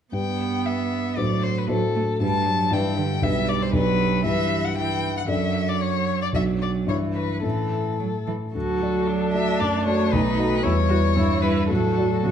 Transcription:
0.12 G2 B3 D4 G4 B4 G5
0.66 E5
1.16 A2 F#3 D4 F#4 C5 D5
1.43 C5
1.58 B4
1.68 A2 F#3 D4 F#4 A4 C5
1.96 A3
2.20 G2 G3 D4 G4 B4 A5
2.46 F#3
2.71 G2 E3 D4 G4 B4 G5
2.98 D3
3.22 B1 G3 D4 G4 B4 E5
3.49 D5
3.62 C5
3.73 B1 F#3 D4 G4 B4
4.24 G2 E3 E4 G4 B4 E5
4.65 F#5
4.78 E3 G5
5.17 F#5
5.27 F#2 F#3 D4 A4 D5 E5
5.69 D5
5.81 C#5
6.22 D5
6.33 B1 F#3 D4 F#4 D5 E5
6.62 D5
6.86 G2 E3 D4 E4 C#5 E5
7.15 B4
7.42 A2 E3 C#4 E4 A4 E5
8.00 F#3
8.27 E3
8.55 D2 F#3 F#4 A4
8.81 A3 F#4 D5
9.08 D4
9.33 A3 F#4 D5 E5
9.59 F#2 A3 D5
9.85 A3 F#4 C#5 D5
10.12 B1 D#4 B4
10.39 A3 F#4 D#5
10.63 E2 G3 E4 C#5
10.89 G3 E4 F#4 B4
11.16 G2 E3 E4
11.42 G3 E4 B4
11.69 A2 F#3 F#4 A4
11.97 F#3 F#4 D5
12.23 A2 C#3 F#4

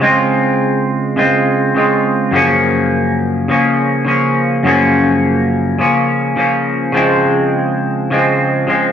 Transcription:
0.00 C#3 G#3 C4
0.05 F4
1.16 C#3 G#3 C4 F4
1.75 C#3 G#3 C4 F4
2.31 F#2 C#3 F3 A#3
2.36 C#4
3.48 C#3 F3 A#3 C#4
4.05 C#3 F3 A#3 C#4
4.63 F#2 C#3 F3 A#3
4.68 C#4
5.79 C#3 F3 A#3 C#4
6.36 C#3 F3 A#3 C#4
6.92 C#3 F3
6.97 G#3 C4
8.10 C#3 F3 G#3 C4
8.67 C#3 F3 G#3 C4

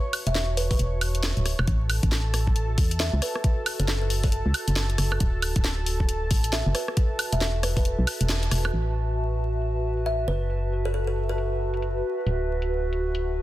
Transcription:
Already playing: F#4 B4 C#5 E5 A5 C#6
0.13 open hi-hat, high woodblock
0.27 E1 E5, closed hi-hat
0.35 E5, snare
0.57 B4, open hi-hat
0.71 B4, kick, open hi-hat
0.79 E1, closed hi-hat
1.01 open hi-hat, high woodblock
1.15 closed hi-hat
1.23 snare, closed hi-hat
1.37 D1, closed hi-hat
1.46 cross-stick, open hi-hat
1.59 E1, cross-stick, high woodblock
1.67 A1 F#4 A4 A5, kick, closed hi-hat
1.90 open hi-hat, high woodblock
2.03 A1, kick, closed hi-hat
2.12 snare
2.34 cross-stick, open hi-hat
2.47 kick
2.56 closed hi-hat
2.78 E2, kick, open hi-hat
2.91 closed hi-hat
3.00 E5, snare, closed hi-hat
3.13 C#2
3.22 B4, cross-stick, open hi-hat
3.35 cross-stick
3.44 kick, closed hi-hat
3.66 open hi-hat, high woodblock
3.79 F#1 A4, closed hi-hat
3.88 A4, snare
4.02 A4
4.10 open hi-hat
4.23 A4, kick, open hi-hat
4.32 closed hi-hat
4.46 C#2
4.54 open hi-hat, high woodblock
4.68 F#1, closed hi-hat
4.76 snare, closed hi-hat
4.90 closed hi-hat
4.98 F#1, cross-stick, open hi-hat
5.12 cross-stick, high woodblock
5.20 D1, kick, closed hi-hat
5.42 open hi-hat, high woodblock
5.56 D1, kick, closed hi-hat
5.64 E5, snare
5.72 B4
5.83 A5, open hi-hat
6.00 kick
6.09 closed hi-hat
6.31 A1, kick, open hi-hat
6.44 closed hi-hat
6.53 E5, snare, closed hi-hat
6.66 F#1
6.75 B4, cross-stick, open hi-hat
6.88 cross-stick
6.97 kick, closed hi-hat
7.19 open hi-hat, high woodblock
7.32 E1 E5, closed hi-hat
7.41 E5, snare
7.63 B4, cross-stick, open hi-hat
7.77 B4, kick, open hi-hat
7.85 closed hi-hat
7.99 B1
8.07 open hi-hat, high woodblock
8.21 E1, closed hi-hat
8.29 snare, closed hi-hat
8.43 closed hi-hat
8.51 E1, cross-stick, open hi-hat
8.65 cross-stick, high woodblock
8.73 A1 F#4 F#5, closed hi-hat, crash
9.09 closed hi-hat
9.40 closed hi-hat
9.62 closed hi-hat
9.97 closed hi-hat
10.06 E5, closed hi-hat
10.28 F#1 B4
10.50 closed hi-hat
10.85 A4, closed hi-hat
10.94 A4
11.07 A4
11.16 closed hi-hat
11.29 A4
11.38 closed hi-hat
11.74 closed hi-hat
11.82 closed hi-hat
12.26 D1, closed hi-hat
12.62 closed hi-hat
12.93 closed hi-hat
13.15 closed hi-hat

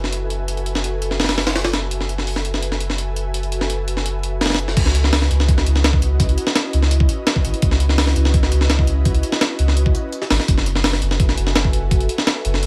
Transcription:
Already playing: F#1 F#4 A4 B4 E5 G#5
0.04 snare
0.12 closed hi-hat
0.30 closed hi-hat
0.48 closed hi-hat
0.57 closed hi-hat
0.66 closed hi-hat
0.75 snare
0.84 closed hi-hat
1.02 closed hi-hat
1.11 snare
1.20 snare, open hi-hat
1.24 snare, open hi-hat
1.29 snare, open hi-hat
1.38 snare, open hi-hat
1.47 snare, open hi-hat
1.55 snare, open hi-hat
1.64 snare, open hi-hat
1.73 snare, closed hi-hat
1.91 F#4 A4 B4 E5 G#5, closed hi-hat
2.00 snare
2.09 closed hi-hat
2.18 snare
2.27 open hi-hat
2.36 snare
2.45 closed hi-hat
2.54 snare
2.63 closed hi-hat
2.72 snare
2.80 closed hi-hat
2.90 snare
2.98 closed hi-hat
3.16 closed hi-hat
3.34 closed hi-hat
3.43 closed hi-hat
3.52 closed hi-hat
3.61 snare
3.70 closed hi-hat
3.88 closed hi-hat
3.97 snare
4.06 closed hi-hat
4.23 closed hi-hat
4.41 snare, open hi-hat
4.46 snare, open hi-hat
4.50 snare, open hi-hat
4.54 snare, open hi-hat
4.59 closed hi-hat
4.68 snare
4.77 C#2, kick, closed hi-hat, crash
4.86 snare
4.95 closed hi-hat
5.04 snare
5.13 snare, open hi-hat
5.22 snare
5.30 C#2, closed hi-hat
5.40 snare
5.48 kick, closed hi-hat
5.58 snare
5.66 C#2, closed hi-hat
5.76 snare
5.84 snare, closed hi-hat
5.93 kick
6.02 closed hi-hat
6.20 kick, closed hi-hat
6.29 closed hi-hat
6.38 closed hi-hat
6.47 snare
6.55 snare, closed hi-hat
6.73 C#2, closed hi-hat
6.82 snare
6.91 closed hi-hat
7.00 kick
7.09 closed hi-hat
7.27 snare, closed hi-hat
7.36 kick
7.45 G#1, closed hi-hat
7.54 closed hi-hat
7.62 C#2, kick, closed hi-hat
7.71 snare
7.80 closed hi-hat
7.89 snare
7.98 snare, open hi-hat
8.07 snare
8.16 C#2, closed hi-hat
8.25 snare
8.34 kick, closed hi-hat
8.43 snare
8.52 C#2, closed hi-hat
8.61 snare
8.70 snare, closed hi-hat
8.79 kick
8.87 closed hi-hat
9.05 kick, closed hi-hat
9.14 closed hi-hat
9.23 closed hi-hat
9.32 snare
9.41 snare, closed hi-hat
9.59 C#2, closed hi-hat
9.68 snare
9.77 closed hi-hat
9.86 kick
9.95 closed hi-hat
10.13 closed hi-hat
10.22 snare
10.30 G#1, snare, open hi-hat
10.40 snare
10.48 F#1, kick, closed hi-hat
10.58 snare
10.66 closed hi-hat
10.75 snare
10.84 snare, open hi-hat
10.93 snare
11.02 F#1, closed hi-hat
11.11 snare
11.20 kick, closed hi-hat
11.29 snare
11.38 F#1, closed hi-hat
11.47 snare
11.56 snare, closed hi-hat
11.65 kick
11.73 closed hi-hat
11.91 kick, closed hi-hat
12.01 closed hi-hat
12.09 closed hi-hat
12.18 snare
12.27 snare, closed hi-hat
12.45 F#1, closed hi-hat
12.54 snare
12.63 closed hi-hat

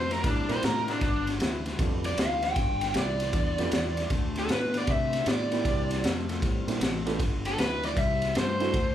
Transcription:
Already playing: F2 C5
0.11 C3 A3 A#4, snare, ride
0.24 A2 C3 G3 D4, kick, snare, ride
0.48 A#2 A#3 C4 D4 E4 G4 C5, snare, ride
0.62 A2 C3 A3 A#4, snare, ride
0.88 C3 A3 D4, snare, ride
1.01 G1 G2 D3 D4, kick, snare, ride
1.27 snare, ride
1.40 D2 G2 E3, snare, ride
1.66 G2 E3, snare, ride
1.79 F2 G2 D3 A3 B3 D4 F4 G4, kick, snare, ride
2.04 D5, snare, ride
2.17 D2 G2 E3 F5, snare, ride
2.42 G2 E3 G5, snare, ride
2.56 G1 G2 D3, kick, snare, ride
2.81 snare, ride
2.94 C2 G2 E3 D5, snare, ride
3.20 G2 E3, snare, ride
3.33 E2 G2 D3, kick, snare, ride
3.58 F2 A3 B3 D4 F4 G4, snare, ride
3.71 E2 G2 E3, snare, ride
3.97 G2 E3, snare, ride
4.10 D2 D3 A3, kick, snare, ride
4.35 A4, snare, ride
4.49 A2 D3 B3, snare, ride
4.53 B4
4.74 D3 B3 D5, snare, ride
4.87 C3 D3 A3, kick, snare, ride
4.91 E5
5.13 snare, ride
5.26 A2 D3 B3 D5, snare, ride
5.52 D3 A#3 B3 C4 D4 E4 G4, snare, ride
5.65 C2 C3 G3, kick, snare, ride
5.91 snare, ride
6.04 F2 C3 A3, snare, ride
6.29 C3 A3, snare, ride
6.42 A2 C3 G3, kick, snare, ride
6.67 A#2 A#3 C4 D4 E4 G4, snare, ride
6.81 A1 C3 A3, snare, ride
7.05 C3 A3 B3 D4 F4 G4, snare, ride
7.19 G1 G2 D3, kick, snare, ride
7.45 A4, snare, ride
7.58 D2 G2 E3 B4, snare, ride
7.83 G2 E3 D5, snare, ride
7.97 C2 C3 G3 E5, kick, snare, ride
8.22 snare, ride
8.35 G2 C3 A3 C5, snare, ride
8.59 C3 A3 C4 D4 E4 F#4, snare, ride
8.74 D2 D3 A3, kick, snare, ride

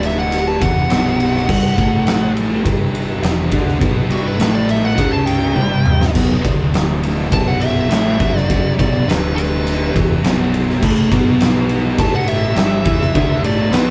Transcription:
Already playing: D1 D2 D3
0.03 E5, ride
0.19 F#5
0.32 ride
0.48 A5
0.61 E1 E2 E3 F#5, kick, ride
0.89 B0 B1 B2, snare, ride
1.20 ride
1.36 snare
1.48 G1 G2 G3, kick, crash
1.77 A1 A2 A3, kick, ride
2.07 snare, ride
2.37 ride
2.64 G1 G2 G3, kick, ride
2.95 ride
3.22 E1 E2 E3, snare, ride
3.51 D2 D3 D4, kick, ride
3.68 snare
3.79 B1 B2 B3, kick, ride
4.09 G1 G2 G3 F#4, ride
4.27 B4
4.38 A1 A2 A3, snare, ride
4.55 D5
4.69 E5, ride
4.85 F#5
4.96 C#2 C#3 C#4, kick, ride
5.13 A5
5.26 G5, ride
5.54 G1 G2 G3, high tom
5.86 mid tom
6.01 snare
6.13 B0 B1 B2, kick, crash
6.41 D1 D2 D3, kick, ride
6.74 snare, ride
7.03 ride
7.30 B0 B1 B2 A5, kick, ride
7.48 F#5
7.61 E5, ride
7.89 A1 A2 A3, snare, ride
8.19 F#1 F#2 F#3, kick, ride
8.37 D5, snare
8.50 kick, ride
8.78 B0 B1 B2 D5, kick, ride
9.06 D1 D2 D3 B4, ride
9.11 snare
9.36 B4, ride
9.67 ride
9.94 E1 E2 E3, kick, ride
10.23 B0 B1 B2, snare, ride
10.54 ride
10.70 snare
10.81 A1 A2 A3, kick, crash
11.10 B1 B2 B3, kick, ride
11.41 snare, ride
11.69 ride
11.97 A1 A2 A3 A5, kick, ride
12.15 F#5
12.28 E5, ride
12.55 G1 G2 G3, snare, ride
12.84 E2 E3 E4, kick, ride
13.02 snare
13.13 D2 D3 D4, kick, ride
13.43 A1 A2 A3 D5, ride
13.71 B1 B2 B3 B4, snare, ride

